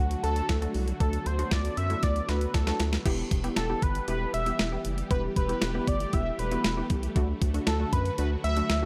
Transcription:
Already playing: analog synth bass D2, string machine D3 F#3 A3 F#4, synth pluck A3 D4 F#4, analog synth lead F#4
0.11 closed hi-hat
0.23 analog synth bass D2, synth pluck A3 D4 F#4, analog synth lead A4, closed hi-hat
0.36 closed hi-hat
0.49 analog synth bass D2, kick, snare, closed hi-hat
0.62 synth pluck A3 D4 F#4, closed hi-hat
0.74 analog synth bass C2, open hi-hat
0.88 closed hi-hat
1.00 analog synth bass D2, synth pluck A3 D4 A4, string machine B3, analog synth lead A4, kick, closed hi-hat
1.13 closed hi-hat
1.26 analog synth bass D2, analog synth lead C5, closed hi-hat
1.39 synth pluck A3 D4 F#4, closed hi-hat
1.51 analog synth bass D2, analog synth lead D5, kick, snare, closed hi-hat
1.65 closed hi-hat
1.77 analog synth bass F#2, analog synth lead E5, closed hi-hat
1.90 synth pluck A3 D4 E4, closed hi-hat
2.03 analog synth bass D2, analog synth lead D5, kick, snare, closed hi-hat
2.16 closed hi-hat
2.29 analog synth bass D2, synth pluck A3 D4 F#4, analog synth lead B4, snare, closed hi-hat
2.41 closed hi-hat
2.54 analog synth bass D2, analog synth lead A4, kick, snare, closed hi-hat
2.67 synth pluck A3 D4 F#4, snare, closed hi-hat
2.80 analog synth bass D2, snare, closed hi-hat
2.93 snare, closed hi-hat
3.06 analog synth bass E1, string machine E3 G3 B3 G4, synth pluck B3 E4 G4, kick, closed hi-hat, crash
3.31 analog synth bass E1, kick, closed hi-hat
3.44 synth pluck B3 E4 G4, closed hi-hat
3.56 analog synth bass E1, analog synth lead A4, snare, closed hi-hat
3.70 synth pluck B3 E4 G4
3.82 analog synth bass G1, analog synth lead B4, kick, closed hi-hat
3.95 closed hi-hat
4.08 analog synth bass E1, synth pluck B3 E4 G4, analog synth lead B4, closed hi-hat
4.34 analog synth bass E1, analog synth lead E5, closed hi-hat
4.46 synth pluck B3 E4 G4, closed hi-hat
4.59 analog synth bass E1, snare, closed hi-hat
4.72 synth pluck B3 E4 G4
4.85 analog synth bass F#1, closed hi-hat
4.98 closed hi-hat
5.11 analog synth bass E1, string machine A3, synth pluck B3 E4 G4, analog synth lead B4, kick, closed hi-hat
5.36 analog synth bass E1, analog synth lead B4, kick, closed hi-hat
5.49 synth pluck B3 E4 G4, closed hi-hat
5.62 analog synth bass E1, snare, closed hi-hat
5.75 synth pluck B3 E4 G4
5.87 analog synth bass G1, analog synth lead D5, kick, closed hi-hat
6.00 closed hi-hat
6.13 analog synth bass E1, synth pluck B3 E4 G4, analog synth lead E5, kick, closed hi-hat
6.39 analog synth bass E1, analog synth lead B4, closed hi-hat
6.51 synth pluck B3 E4 F#4, closed hi-hat
6.64 analog synth bass E1, snare, closed hi-hat
6.77 synth pluck B3 E4 G4
6.90 analog synth bass C2, kick, closed hi-hat
7.03 closed hi-hat
7.16 analog synth bass D2, string machine D3 F#3 F#4, synth pluck A3 D4 F#4, kick, closed hi-hat
7.42 analog synth bass D2, kick, closed hi-hat
7.54 synth pluck A3 D4 F#4, closed hi-hat
7.67 analog synth bass D2, analog synth lead A4, snare, closed hi-hat
7.80 synth pluck A3 D4 F#4
7.93 analog synth bass F#2, analog synth lead B4, kick, closed hi-hat
8.05 closed hi-hat
8.18 analog synth bass D2, synth pluck A3 D4 F#4, analog synth lead B4, closed hi-hat
8.44 analog synth bass D2, analog synth lead E5, closed hi-hat
8.57 synth pluck A3 D4 F#4, closed hi-hat
8.70 analog synth bass D2, snare, closed hi-hat

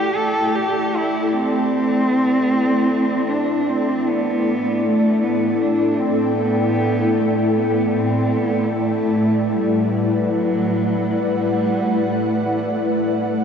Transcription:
Already playing: ambient pad A3 E4 A4 D5 A5, cello G4
0.15 cello A4
0.55 cello G4
0.96 cello E4
1.33 cello C4
3.29 cello D4
3.70 cello C4
4.09 ambient pad A2, cello B3
4.38 ambient pad A4
4.86 cello A3
5.01 ambient pad G5
5.23 cello B3
5.62 cello D4
5.99 cello C4
6.38 cello B3
7.18 cello A3
7.57 cello B3
7.99 cello C4
8.37 cello B3
8.74 cello A3
8.79 ambient pad B4 F#5
9.53 cello G3
10.32 cello F#3
11.11 cello G3

